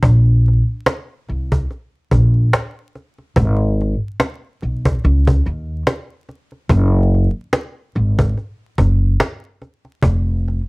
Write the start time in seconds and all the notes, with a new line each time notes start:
0.03 A#1, cajon bass
0.48 cajon slap
0.86 cajon slap
1.29 C2, cajon slap
1.52 cajon bass
1.71 cajon slap
2.11 A#1, cajon bass
2.53 cajon slap
2.95 cajon slap
3.18 cajon slap
3.36 G#1, cajon bass
3.81 cajon slap
4.20 cajon slap
4.62 B1, cajon slap
4.85 cajon bass
5.04 C#2, cajon slap
5.27 cajon bass
5.46 D#2, cajon slap
5.87 cajon slap
6.29 cajon slap
6.52 cajon slap
6.69 F#1, cajon bass
7.15 cajon slap
7.53 cajon slap
7.95 G#1, cajon slap
8.19 cajon bass
8.37 cajon slap
8.78 F#1, cajon bass
9.20 cajon slap
9.62 cajon slap
9.85 cajon slap
10.03 F1, cajon bass
10.48 cajon slap